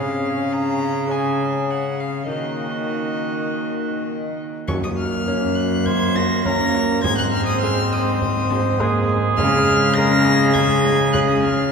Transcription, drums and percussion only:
4.68 frame drum
5.86 frame drum
6.15 frame drum
6.45 frame drum
6.75 frame drum
7.04 frame drum
8.21 frame drum
8.51 frame drum
8.80 frame drum
9.09 frame drum
9.38 frame drum
10.55 frame drum
10.85 frame drum
11.14 frame drum
11.43 frame drum

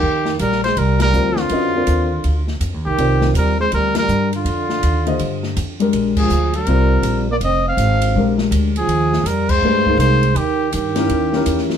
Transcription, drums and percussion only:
0.25 snare
0.39 hi-hat pedal, ride
0.52 snare
0.64 snare, ride
0.77 ride
1.00 snare, ride
1.13 hi-hat pedal
1.36 snare
1.49 ride
1.87 hi-hat pedal, ride
2.24 ride
2.48 snare
2.61 hi-hat pedal, ride
2.98 ride
3.21 snare
3.35 hi-hat pedal, ride
3.72 ride
3.95 snare, ride
4.08 hi-hat pedal
4.33 ride
4.46 ride
4.70 snare
4.83 hi-hat pedal, ride
5.07 ride
5.19 ride
5.43 snare
5.57 hi-hat pedal, ride
5.80 ride
5.93 ride
6.17 kick, crash
6.30 hi-hat pedal
6.54 ride
6.67 ride
7.03 hi-hat pedal, ride
7.41 ride
7.78 hi-hat pedal, ride
8.02 ride
8.38 snare
8.52 hi-hat pedal, ride
8.76 ride
8.89 ride
9.13 snare
9.26 hi-hat pedal, ride
9.49 kick, crash
9.86 kick
10.00 hi-hat pedal, ride
10.23 ride
10.36 ride
10.73 hi-hat pedal, ride
10.96 snare, ride
11.10 ride
11.33 snare
11.46 hi-hat pedal, ride
11.58 snare
11.70 snare

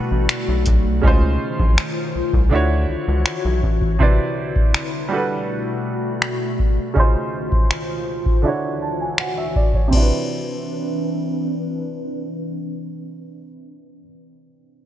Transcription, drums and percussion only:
0.29 finger snap, closed hi-hat
0.66 kick, closed hi-hat
1.04 kick
1.60 kick
1.78 finger snap
2.33 kick
3.26 finger snap
3.63 kick
3.82 kick
4.00 kick
4.56 kick
4.74 finger snap
6.22 finger snap
6.60 kick
6.96 kick
7.52 kick
7.71 finger snap
8.26 kick
9.18 finger snap
9.56 kick
9.74 kick
9.93 kick, crash

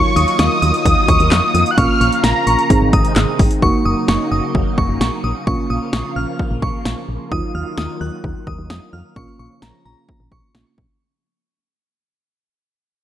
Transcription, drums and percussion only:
0.17 closed hi-hat
0.28 closed hi-hat
0.39 snare, closed hi-hat
0.62 closed hi-hat
0.74 closed hi-hat
0.85 kick, closed hi-hat
1.08 kick, closed hi-hat
1.20 closed hi-hat
1.32 snare, clap, closed hi-hat
1.55 closed hi-hat
1.66 closed hi-hat
1.78 kick, closed hi-hat
2.01 closed hi-hat
2.12 closed hi-hat
2.24 snare, closed hi-hat
2.47 closed hi-hat
2.59 closed hi-hat
2.70 kick, closed hi-hat
2.93 kick, closed hi-hat
3.05 closed hi-hat
3.16 snare, clap, closed hi-hat
3.39 kick, open hi-hat
3.51 closed hi-hat
3.62 kick
4.08 snare
4.55 kick
4.78 kick
5.01 snare
5.47 kick
5.93 snare
6.39 kick
6.62 kick
6.85 snare
7.32 kick
7.78 snare
8.24 kick
8.47 kick
8.70 snare
9.16 kick
9.62 snare
10.09 kick
10.32 kick
10.55 snare
10.78 kick

